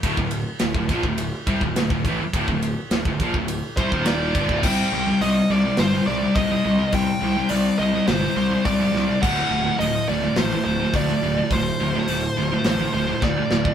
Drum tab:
CC |----------------|----------------|x---------------|----------------|
RD |x-x-x-x-x-x-x-x-|x-x-x-x-x-x-x-x-|----------------|----------------|
HH |----------------|----------------|----o---o---o---|o---o---o---o---|
SD |----o-o-----o---|----o-------o---|--------o---o---|--------o-----o-|
BD |oo---ooo--oo-oo-|oo---ooo--oo--oo|o-----------o---|o-----------o---|

CC |x---------------|----------------|
RD |----------------|----------------|
HH |----o---o---o---|o---o---o-------|
SD |--------o---o---|--------o---o-o-|
BD |o-----------o---|o-----------o--o|